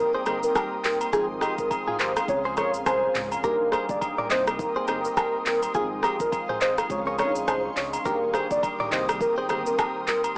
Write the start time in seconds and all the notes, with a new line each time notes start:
Already playing: G3 A#3 C4 D#4 A#4 G5 C6 D#6
0.00 A#4
0.15 G#4 C5
0.25 G1 G3 A#3 C4 D#4 G#4 A#4 C5, cross-stick, high agogo, shaker
0.43 A#4, shaker
0.55 G4 A#4, kick, cross-stick, high agogo, low woodblock, shaker
0.84 D#1 A#4, clap, open hi-hat, shaker
1.01 high agogo, shaker
1.12 G#1 F3 G#3 C4 D#4 F4 G#4 F5 D#6, kick, cross-stick, shaker
1.41 D#4 G4, cross-stick, high agogo, shaker
1.58 G#1 A#4, kick, shaker
1.71 kick, high agogo, shaker
1.88 F4 G#4, mid tom
1.99 G#1 G4 A#4 C5, clap, open hi-hat, shaker
2.16 cross-stick, high agogo, shaker
2.27 C#2 F3 G#3 C4 C#4 G#4 C#5 G#5, kick, shaker
2.45 G#4 C5
2.56 F3 G#3 C4 C#4 A#4 C#5, cross-stick, high agogo, shaker
2.74 A#1, shaker
2.86 C2 G#4 C5, kick, cross-stick, high agogo, low woodblock, shaker
3.15 C#2, clap, mid tom, open hi-hat, shaker
3.32 high agogo, shaker
3.43 D#1 G3 A#3 D4 D#4 G4 A#4 G5 D6 D#6, kick, shaker
3.72 G#4 C5, cross-stick, high agogo, shaker
3.89 G1 D5, kick, shaker
4.01 kick, high agogo, shaker
4.18 A#4 D5, mid tom
4.29 C2 G3 A#3 C4 D#4 A#4 C5 D#5 C6, clap, open hi-hat, shaker
4.47 cross-stick, high agogo, shaker
4.59 A#4, kick, shaker
4.76 G#4 C5
4.87 G1 G3 A#3 C4 D#4 G#4 A#4 C5, cross-stick, high agogo, shaker
5.05 A#4, shaker
5.17 G4 A#4, kick, cross-stick, high agogo, low woodblock, shaker
5.46 D#1 A#4, clap, open hi-hat, shaker
5.63 high agogo, shaker
5.74 G#1 F3 G#3 A#3 D#4 F4 G#4 F5 C6, kick, shaker
5.81 C4
6.03 G4 A#4, cross-stick, high agogo, shaker
6.20 G#1 A#4, kick, shaker
6.32 kick, high agogo, shaker
6.49 G#4 C5, mid tom
6.61 G#1 C5 D#5, clap, open hi-hat, shaker
6.78 cross-stick, high agogo, shaker
6.89 C#2 F3 G#3 C4 C#4 G#4 C#5 C6 C#6, kick, shaker
7.07 A#4 C#5
7.18 F3 G#3 C4 C#4 D4 A#4 C#5, cross-stick, high agogo, shaker
7.27 D#4
7.35 A#1, shaker
7.48 C2 G#4 C5, kick, cross-stick, high agogo, low woodblock, shaker
7.77 C#2 C#5, clap, open hi-hat, shaker
7.93 high agogo, shaker
8.04 D#1 D#3 G3 A#3 D4 G4 A#4 G5 D6 D#6, kick, shaker
8.34 G#4 C5, cross-stick, high agogo, shaker
8.51 G1 D5, kick, shaker
8.63 kick, high agogo, shaker
8.80 A#4 D5, mid tom
8.91 C2 D#3 G3 A#3 C4 G4 C5 D#5 C6, clap, open hi-hat, shaker
9.09 cross-stick, high agogo, shaker
9.21 A#4, kick, shaker
9.38 G#4 C5
9.48 G1 D#3 G3 A#3 C4 G4 G#4 C5, cross-stick, high agogo, shaker
9.66 A#4, shaker
9.79 G4 A#4, kick, cross-stick, high agogo, low woodblock, shaker
10.07 D#1 A#4, clap, open hi-hat, shaker
10.24 high agogo, shaker